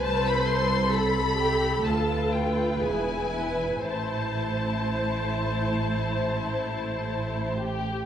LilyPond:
<<
  \new Staff \with { instrumentName = "Violin section" } { \time 4/4 \key a \minor \tempo 4 = 58 a''16 b''16 c'''8 b''4 a''8 g''8 gis''4 | a''2.~ a''8 r8 | }
  \new Staff \with { instrumentName = "Viola section" } { \time 4/4 \key a \minor c''4 a'2 gis'8 b'8 | c''2.~ c''8 r8 | }
  \new Staff \with { instrumentName = "Violin section" } { \time 4/4 \key a \minor << { a'2 b'2 | c''2.~ c''8 g'8 | } \\ { b'4 a'8 g'8 f'4 e'4 | e'2.~ e'8 r8 | } >> }
  \new Staff \with { instrumentName = "Cello section" } { \clef bass \time 4/4 \key a \minor c,2 d,4 e,4 | a,1 | }
  \new Staff \with { instrumentName = "Double bass section" } { \clef bass \time 4/4 \key a \minor c,2 d,4 e,,4 | a,,1 | }
>>